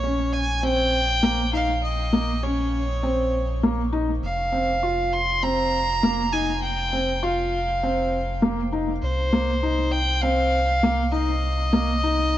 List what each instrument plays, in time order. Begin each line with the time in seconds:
Already playing: analog synth bass A#1, violin C#5
0.03 felt piano C#4
0.33 violin G#5
0.63 felt piano C4, violin G5
1.23 felt piano A#3
1.53 felt piano D#4, violin F5
1.83 violin D#5
2.13 felt piano A#3
2.43 felt piano C#4, violin C#5
3.03 felt piano C4
3.63 felt piano A#3
3.93 felt piano D#4
4.22 analog synth bass F1, violin F5
4.52 felt piano C4
4.83 felt piano F4
5.13 violin C6
5.43 felt piano C4, violin A#5
6.03 felt piano A#3
6.32 felt piano D#4, violin G#5
6.62 violin G5
6.93 felt piano C4
7.23 felt piano F4, violin F5
7.83 felt piano C4
8.42 felt piano A#3
8.72 felt piano D#4
9.02 analog synth bass C2, violin C5
9.33 felt piano A#3
9.63 felt piano D#4
9.91 violin G5
10.21 felt piano C4, violin F5
10.83 felt piano A#3
11.12 felt piano D#4, violin D#5
11.73 felt piano A#3
12.03 felt piano D#4